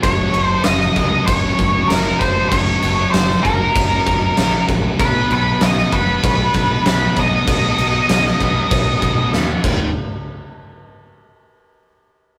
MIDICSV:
0, 0, Header, 1, 5, 480
1, 0, Start_track
1, 0, Tempo, 619835
1, 29, Time_signature, 4, 2, 24, 8
1, 9587, End_track
2, 0, Start_track
2, 0, Title_t, "Lead electric guitar"
2, 0, Program_c, 0, 29
2, 24, Note_on_c, 0, 73, 101
2, 350, Note_off_c, 0, 73, 0
2, 350, Note_on_c, 0, 72, 101
2, 476, Note_off_c, 0, 72, 0
2, 501, Note_on_c, 0, 75, 108
2, 975, Note_off_c, 0, 75, 0
2, 978, Note_on_c, 0, 73, 100
2, 1455, Note_on_c, 0, 70, 93
2, 1478, Note_off_c, 0, 73, 0
2, 1696, Note_on_c, 0, 72, 92
2, 1709, Note_off_c, 0, 70, 0
2, 1926, Note_off_c, 0, 72, 0
2, 1929, Note_on_c, 0, 73, 96
2, 2389, Note_off_c, 0, 73, 0
2, 2408, Note_on_c, 0, 72, 87
2, 2654, Note_on_c, 0, 70, 89
2, 2667, Note_off_c, 0, 72, 0
2, 3591, Note_off_c, 0, 70, 0
2, 3875, Note_on_c, 0, 71, 102
2, 4120, Note_off_c, 0, 71, 0
2, 4128, Note_on_c, 0, 71, 96
2, 4357, Note_on_c, 0, 75, 100
2, 4366, Note_off_c, 0, 71, 0
2, 4590, Note_on_c, 0, 71, 95
2, 4601, Note_off_c, 0, 75, 0
2, 5280, Note_off_c, 0, 71, 0
2, 5323, Note_on_c, 0, 71, 89
2, 5541, Note_off_c, 0, 71, 0
2, 5574, Note_on_c, 0, 75, 94
2, 7211, Note_off_c, 0, 75, 0
2, 9587, End_track
3, 0, Start_track
3, 0, Title_t, "Distorted electric guitar"
3, 0, Program_c, 1, 30
3, 22, Note_on_c, 1, 42, 90
3, 31, Note_on_c, 1, 49, 94
3, 34, Note_on_c, 1, 54, 102
3, 736, Note_off_c, 1, 49, 0
3, 741, Note_off_c, 1, 54, 0
3, 744, Note_on_c, 1, 54, 89
3, 752, Note_on_c, 1, 49, 81
3, 758, Note_off_c, 1, 42, 0
3, 761, Note_on_c, 1, 42, 74
3, 1456, Note_off_c, 1, 49, 0
3, 1461, Note_off_c, 1, 42, 0
3, 1470, Note_on_c, 1, 42, 83
3, 1485, Note_on_c, 1, 49, 83
3, 1486, Note_off_c, 1, 54, 0
3, 1490, Note_on_c, 1, 54, 90
3, 1930, Note_off_c, 1, 42, 0
3, 1939, Note_off_c, 1, 49, 0
3, 1939, Note_on_c, 1, 42, 95
3, 1948, Note_on_c, 1, 49, 98
3, 1954, Note_off_c, 1, 54, 0
3, 1957, Note_on_c, 1, 54, 110
3, 2650, Note_off_c, 1, 42, 0
3, 2655, Note_off_c, 1, 49, 0
3, 2657, Note_off_c, 1, 54, 0
3, 2661, Note_on_c, 1, 54, 89
3, 2674, Note_on_c, 1, 49, 81
3, 2676, Note_on_c, 1, 42, 77
3, 3373, Note_off_c, 1, 42, 0
3, 3378, Note_off_c, 1, 49, 0
3, 3383, Note_on_c, 1, 42, 84
3, 3386, Note_on_c, 1, 49, 91
3, 3390, Note_off_c, 1, 54, 0
3, 3393, Note_on_c, 1, 54, 94
3, 3852, Note_off_c, 1, 42, 0
3, 3854, Note_off_c, 1, 49, 0
3, 3860, Note_on_c, 1, 47, 103
3, 3865, Note_off_c, 1, 54, 0
3, 3869, Note_on_c, 1, 54, 101
3, 3876, Note_on_c, 1, 59, 99
3, 4584, Note_off_c, 1, 59, 0
3, 4588, Note_on_c, 1, 59, 90
3, 4589, Note_off_c, 1, 54, 0
3, 4592, Note_on_c, 1, 54, 87
3, 4598, Note_off_c, 1, 47, 0
3, 4601, Note_on_c, 1, 47, 70
3, 5294, Note_off_c, 1, 47, 0
3, 5295, Note_off_c, 1, 59, 0
3, 5297, Note_off_c, 1, 54, 0
3, 5303, Note_on_c, 1, 47, 85
3, 5316, Note_on_c, 1, 54, 90
3, 5318, Note_on_c, 1, 59, 87
3, 5769, Note_off_c, 1, 47, 0
3, 5778, Note_on_c, 1, 47, 99
3, 5780, Note_off_c, 1, 54, 0
3, 5780, Note_off_c, 1, 59, 0
3, 5791, Note_on_c, 1, 54, 100
3, 5795, Note_on_c, 1, 59, 103
3, 6490, Note_off_c, 1, 47, 0
3, 6495, Note_off_c, 1, 59, 0
3, 6497, Note_off_c, 1, 54, 0
3, 6504, Note_on_c, 1, 59, 102
3, 6515, Note_on_c, 1, 54, 86
3, 6525, Note_on_c, 1, 47, 83
3, 7213, Note_off_c, 1, 59, 0
3, 7218, Note_off_c, 1, 54, 0
3, 7223, Note_off_c, 1, 47, 0
3, 7237, Note_on_c, 1, 47, 75
3, 7240, Note_on_c, 1, 54, 82
3, 7249, Note_on_c, 1, 59, 97
3, 7460, Note_on_c, 1, 39, 106
3, 7464, Note_off_c, 1, 54, 0
3, 7465, Note_off_c, 1, 47, 0
3, 7467, Note_on_c, 1, 51, 105
3, 7468, Note_on_c, 1, 46, 97
3, 7480, Note_off_c, 1, 59, 0
3, 7657, Note_off_c, 1, 39, 0
3, 7660, Note_off_c, 1, 51, 0
3, 7661, Note_off_c, 1, 46, 0
3, 9587, End_track
4, 0, Start_track
4, 0, Title_t, "Fingered electric bass"
4, 0, Program_c, 2, 33
4, 27, Note_on_c, 2, 30, 99
4, 195, Note_off_c, 2, 30, 0
4, 264, Note_on_c, 2, 30, 90
4, 434, Note_off_c, 2, 30, 0
4, 504, Note_on_c, 2, 30, 92
4, 674, Note_off_c, 2, 30, 0
4, 747, Note_on_c, 2, 37, 87
4, 916, Note_off_c, 2, 37, 0
4, 990, Note_on_c, 2, 30, 98
4, 1157, Note_off_c, 2, 30, 0
4, 1229, Note_on_c, 2, 30, 89
4, 1397, Note_off_c, 2, 30, 0
4, 1465, Note_on_c, 2, 30, 97
4, 1634, Note_off_c, 2, 30, 0
4, 1713, Note_on_c, 2, 30, 87
4, 1880, Note_off_c, 2, 30, 0
4, 1949, Note_on_c, 2, 30, 100
4, 2117, Note_off_c, 2, 30, 0
4, 2194, Note_on_c, 2, 30, 95
4, 2360, Note_off_c, 2, 30, 0
4, 2426, Note_on_c, 2, 30, 100
4, 2596, Note_off_c, 2, 30, 0
4, 2672, Note_on_c, 2, 30, 92
4, 2839, Note_off_c, 2, 30, 0
4, 2908, Note_on_c, 2, 30, 95
4, 3077, Note_off_c, 2, 30, 0
4, 3146, Note_on_c, 2, 30, 93
4, 3316, Note_off_c, 2, 30, 0
4, 3388, Note_on_c, 2, 34, 95
4, 3557, Note_off_c, 2, 34, 0
4, 3630, Note_on_c, 2, 34, 95
4, 3798, Note_off_c, 2, 34, 0
4, 3869, Note_on_c, 2, 35, 103
4, 4037, Note_off_c, 2, 35, 0
4, 4109, Note_on_c, 2, 35, 97
4, 4278, Note_off_c, 2, 35, 0
4, 4350, Note_on_c, 2, 35, 97
4, 4518, Note_off_c, 2, 35, 0
4, 4590, Note_on_c, 2, 30, 91
4, 4758, Note_off_c, 2, 30, 0
4, 4827, Note_on_c, 2, 35, 99
4, 4996, Note_off_c, 2, 35, 0
4, 5070, Note_on_c, 2, 35, 94
4, 5238, Note_off_c, 2, 35, 0
4, 5304, Note_on_c, 2, 35, 99
4, 5475, Note_off_c, 2, 35, 0
4, 5550, Note_on_c, 2, 35, 89
4, 5718, Note_off_c, 2, 35, 0
4, 5792, Note_on_c, 2, 35, 93
4, 5960, Note_off_c, 2, 35, 0
4, 6030, Note_on_c, 2, 35, 88
4, 6199, Note_off_c, 2, 35, 0
4, 6274, Note_on_c, 2, 35, 97
4, 6441, Note_off_c, 2, 35, 0
4, 6505, Note_on_c, 2, 35, 90
4, 6675, Note_off_c, 2, 35, 0
4, 6743, Note_on_c, 2, 35, 97
4, 6914, Note_off_c, 2, 35, 0
4, 6989, Note_on_c, 2, 35, 90
4, 7157, Note_off_c, 2, 35, 0
4, 7223, Note_on_c, 2, 39, 94
4, 7394, Note_off_c, 2, 39, 0
4, 7467, Note_on_c, 2, 27, 90
4, 7691, Note_off_c, 2, 27, 0
4, 9587, End_track
5, 0, Start_track
5, 0, Title_t, "Drums"
5, 27, Note_on_c, 9, 36, 107
5, 27, Note_on_c, 9, 49, 76
5, 104, Note_off_c, 9, 36, 0
5, 104, Note_off_c, 9, 49, 0
5, 261, Note_on_c, 9, 49, 60
5, 339, Note_off_c, 9, 49, 0
5, 493, Note_on_c, 9, 49, 85
5, 497, Note_on_c, 9, 38, 122
5, 570, Note_off_c, 9, 49, 0
5, 574, Note_off_c, 9, 38, 0
5, 625, Note_on_c, 9, 38, 34
5, 702, Note_off_c, 9, 38, 0
5, 742, Note_on_c, 9, 49, 62
5, 746, Note_on_c, 9, 36, 75
5, 819, Note_off_c, 9, 49, 0
5, 823, Note_off_c, 9, 36, 0
5, 986, Note_on_c, 9, 49, 86
5, 989, Note_on_c, 9, 36, 116
5, 1064, Note_off_c, 9, 49, 0
5, 1066, Note_off_c, 9, 36, 0
5, 1230, Note_on_c, 9, 36, 80
5, 1230, Note_on_c, 9, 49, 61
5, 1308, Note_off_c, 9, 36, 0
5, 1308, Note_off_c, 9, 49, 0
5, 1472, Note_on_c, 9, 49, 92
5, 1476, Note_on_c, 9, 38, 124
5, 1549, Note_off_c, 9, 49, 0
5, 1553, Note_off_c, 9, 38, 0
5, 1710, Note_on_c, 9, 36, 80
5, 1711, Note_on_c, 9, 49, 65
5, 1788, Note_off_c, 9, 36, 0
5, 1789, Note_off_c, 9, 49, 0
5, 1948, Note_on_c, 9, 49, 90
5, 1949, Note_on_c, 9, 36, 109
5, 2025, Note_off_c, 9, 49, 0
5, 2026, Note_off_c, 9, 36, 0
5, 2187, Note_on_c, 9, 49, 64
5, 2265, Note_off_c, 9, 49, 0
5, 2429, Note_on_c, 9, 49, 86
5, 2432, Note_on_c, 9, 38, 119
5, 2506, Note_off_c, 9, 49, 0
5, 2510, Note_off_c, 9, 38, 0
5, 2557, Note_on_c, 9, 38, 35
5, 2634, Note_off_c, 9, 38, 0
5, 2671, Note_on_c, 9, 36, 74
5, 2671, Note_on_c, 9, 49, 59
5, 2748, Note_off_c, 9, 36, 0
5, 2748, Note_off_c, 9, 49, 0
5, 2908, Note_on_c, 9, 36, 113
5, 2909, Note_on_c, 9, 49, 85
5, 2986, Note_off_c, 9, 36, 0
5, 2986, Note_off_c, 9, 49, 0
5, 3147, Note_on_c, 9, 49, 59
5, 3148, Note_on_c, 9, 36, 81
5, 3225, Note_off_c, 9, 49, 0
5, 3226, Note_off_c, 9, 36, 0
5, 3385, Note_on_c, 9, 49, 85
5, 3389, Note_on_c, 9, 38, 122
5, 3463, Note_off_c, 9, 49, 0
5, 3466, Note_off_c, 9, 38, 0
5, 3628, Note_on_c, 9, 36, 83
5, 3629, Note_on_c, 9, 49, 60
5, 3706, Note_off_c, 9, 36, 0
5, 3706, Note_off_c, 9, 49, 0
5, 3867, Note_on_c, 9, 49, 79
5, 3868, Note_on_c, 9, 36, 118
5, 3944, Note_off_c, 9, 49, 0
5, 3946, Note_off_c, 9, 36, 0
5, 4108, Note_on_c, 9, 49, 57
5, 4185, Note_off_c, 9, 49, 0
5, 4343, Note_on_c, 9, 49, 85
5, 4347, Note_on_c, 9, 38, 122
5, 4421, Note_off_c, 9, 49, 0
5, 4424, Note_off_c, 9, 38, 0
5, 4472, Note_on_c, 9, 38, 34
5, 4550, Note_off_c, 9, 38, 0
5, 4585, Note_on_c, 9, 49, 59
5, 4589, Note_on_c, 9, 36, 78
5, 4662, Note_off_c, 9, 49, 0
5, 4667, Note_off_c, 9, 36, 0
5, 4827, Note_on_c, 9, 49, 84
5, 4830, Note_on_c, 9, 36, 117
5, 4905, Note_off_c, 9, 49, 0
5, 4907, Note_off_c, 9, 36, 0
5, 5063, Note_on_c, 9, 49, 64
5, 5069, Note_on_c, 9, 36, 78
5, 5141, Note_off_c, 9, 49, 0
5, 5146, Note_off_c, 9, 36, 0
5, 5309, Note_on_c, 9, 49, 88
5, 5313, Note_on_c, 9, 38, 117
5, 5387, Note_off_c, 9, 49, 0
5, 5391, Note_off_c, 9, 38, 0
5, 5546, Note_on_c, 9, 49, 62
5, 5551, Note_on_c, 9, 36, 75
5, 5624, Note_off_c, 9, 49, 0
5, 5628, Note_off_c, 9, 36, 0
5, 5787, Note_on_c, 9, 49, 87
5, 5789, Note_on_c, 9, 36, 109
5, 5864, Note_off_c, 9, 49, 0
5, 5867, Note_off_c, 9, 36, 0
5, 6027, Note_on_c, 9, 49, 66
5, 6104, Note_off_c, 9, 49, 0
5, 6266, Note_on_c, 9, 49, 92
5, 6270, Note_on_c, 9, 38, 114
5, 6343, Note_off_c, 9, 49, 0
5, 6347, Note_off_c, 9, 38, 0
5, 6395, Note_on_c, 9, 38, 33
5, 6473, Note_off_c, 9, 38, 0
5, 6509, Note_on_c, 9, 36, 73
5, 6509, Note_on_c, 9, 49, 62
5, 6586, Note_off_c, 9, 36, 0
5, 6586, Note_off_c, 9, 49, 0
5, 6745, Note_on_c, 9, 49, 93
5, 6747, Note_on_c, 9, 36, 124
5, 6822, Note_off_c, 9, 49, 0
5, 6825, Note_off_c, 9, 36, 0
5, 6987, Note_on_c, 9, 36, 83
5, 6987, Note_on_c, 9, 49, 65
5, 7064, Note_off_c, 9, 36, 0
5, 7065, Note_off_c, 9, 49, 0
5, 7229, Note_on_c, 9, 38, 67
5, 7306, Note_off_c, 9, 38, 0
5, 7463, Note_on_c, 9, 57, 89
5, 7465, Note_on_c, 9, 36, 103
5, 7541, Note_off_c, 9, 57, 0
5, 7542, Note_off_c, 9, 36, 0
5, 9587, End_track
0, 0, End_of_file